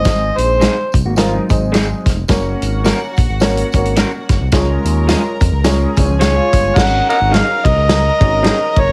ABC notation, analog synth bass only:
X:1
M:4/4
L:1/16
Q:"Swing" 1/4=107
K:Abmix
V:1 name="Analog synth bass" clef=bass
A,,,2 B,,,3 z C,, A,,,3 A,,,4 F,,,2 | G,,,2 A,,,3 z B,,, A,,,3 A,,,3 z G,,, C,, | D,,2 E,,3 z F,, D,,3 D,,4 =G,,,2 | A,,,2 z A,,,2 z C,, D,,3 A,,,3 z G,,, =G,,, |]